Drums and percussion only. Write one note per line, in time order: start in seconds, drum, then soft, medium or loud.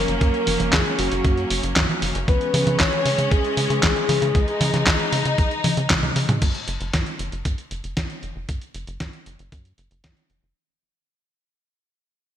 0.08 closed hi-hat medium
0.21 kick loud
0.21 closed hi-hat medium
0.34 closed hi-hat soft
0.47 open hi-hat loud
0.47 high conga medium
0.60 closed hi-hat medium
0.60 high conga medium
0.73 kick loud
0.73 snare loud
0.73 clap loud
0.73 closed hi-hat medium
0.86 closed hi-hat soft
0.99 open hi-hat loud
1.12 closed hi-hat medium
1.25 kick loud
1.25 closed hi-hat medium
1.37 closed hi-hat soft
1.50 open hi-hat loud
1.63 closed hi-hat medium
1.76 kick loud
1.76 snare loud
1.76 clap loud
1.76 closed hi-hat medium
1.89 closed hi-hat soft
1.89 high conga medium
2.02 open hi-hat medium
2.15 closed hi-hat medium
2.28 kick loud
2.28 closed hi-hat medium
2.41 closed hi-hat soft
2.54 open hi-hat loud
2.54 high conga medium
2.67 closed hi-hat medium
2.67 high conga medium
2.80 kick loud
2.80 snare loud
2.80 clap loud
2.80 closed hi-hat medium
2.93 closed hi-hat soft
3.06 open hi-hat loud
3.19 closed hi-hat medium
3.31 kick loud
3.31 closed hi-hat medium
3.44 closed hi-hat soft
3.57 open hi-hat loud
3.70 closed hi-hat medium
3.83 kick loud
3.83 snare loud
3.83 clap loud
3.83 closed hi-hat medium
3.96 closed hi-hat soft
4.09 open hi-hat loud
4.09 high conga medium
4.22 closed hi-hat medium
4.35 kick loud
4.35 closed hi-hat medium
4.48 closed hi-hat soft
4.61 open hi-hat loud
4.61 high conga medium
4.74 snare soft
4.74 closed hi-hat medium
4.74 high conga medium
4.87 kick loud
4.87 snare loud
4.87 clap loud
4.87 closed hi-hat medium
5.00 closed hi-hat soft
5.13 open hi-hat loud
5.25 closed hi-hat medium
5.38 kick loud
5.38 closed hi-hat medium
5.51 closed hi-hat soft
5.64 open hi-hat loud
5.64 high tom medium
5.64 high conga medium
5.77 closed hi-hat medium
5.90 kick loud
5.90 snare loud
5.90 clap loud
5.90 closed hi-hat medium
5.90 mid tom medium
6.03 closed hi-hat soft
6.03 mid tom medium
6.03 high conga medium
6.16 open hi-hat loud
6.29 closed hi-hat medium
6.29 mid tom medium
6.42 kick loud
6.42 closed hi-hat medium
6.42 crash medium
6.55 closed hi-hat soft
6.68 closed hi-hat medium
6.81 closed hi-hat soft
6.93 kick loud
6.93 snare loud
6.93 closed hi-hat medium
7.06 closed hi-hat soft
7.19 closed hi-hat medium
7.32 closed hi-hat soft
7.45 kick loud
7.45 closed hi-hat medium
7.58 closed hi-hat soft
7.71 closed hi-hat medium
7.84 closed hi-hat soft
7.97 kick loud
7.97 snare loud
7.97 closed hi-hat medium
8.10 closed hi-hat soft
8.23 closed hi-hat soft
8.49 kick loud
8.49 closed hi-hat medium
8.61 closed hi-hat soft
8.74 closed hi-hat medium
8.87 closed hi-hat soft
9.00 kick loud
9.00 snare loud
9.00 closed hi-hat medium
9.13 closed hi-hat soft
9.26 closed hi-hat medium
9.39 closed hi-hat soft
9.52 kick loud
9.52 closed hi-hat medium
9.65 closed hi-hat soft
9.78 closed hi-hat medium
9.91 closed hi-hat soft
10.04 kick loud
10.04 snare loud
10.04 closed hi-hat medium
10.17 closed hi-hat soft
10.30 closed hi-hat soft